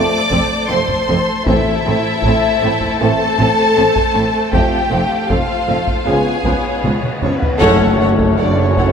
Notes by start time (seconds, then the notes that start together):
Already playing: F3 A3 C4 A4 C5 D5 A5 D6
0.31 F1 F2 A3 C4, taiko
0.68 F1 F2 A3 C4 C5 C6
0.88 taiko
1.08 F1 F2 A3 C4
1.45 A1 A2 E3 A3 C4 E4 A4 C5 E5 A5, taiko
1.86 A1 A2 A3 C4
2.22 A1 A2 A3 C4, taiko
2.63 A1 A2 A3 C4
2.81 taiko
2.99 A1 A2 E3 A3 C4 A4 A5
3.38 A1 A2 A3 C4, taiko
3.76 A1 A2 A3 C4
3.96 taiko
4.14 A1 A2 A3 C4
4.52 F1 F2 C3 A3 C4 F4 G4 F5 G5, taiko
4.91 F1 F2 A3 C4
5.29 F1 F2 A3 C4 F4 F5, taiko
5.68 F1 F2 A3 C4
5.87 taiko
6.05 C#2 C#3 F3 G#3 B3 F4 G#4 C#5 G#5
6.45 C#2 F3 B3, taiko
6.84 C#2 F3 B3, taiko mid
7.03 taiko mid
7.22 C#2 F3 B3 C#4 C#5, taiko low-mid
7.34 B3 B4
7.42 taiko low
7.59 F#1 F#2 F#3 A3 C#4 A4 C#5 F#5, taiko, tam-tam, impact
8.00 A4 C#5 F#5
8.18 taiko
8.36 F#1 F#2 D4 A4 C#5 D5 F#5
8.63 C#4 C#5
8.77 A4 C#5 F#5, taiko
8.88 B3 B4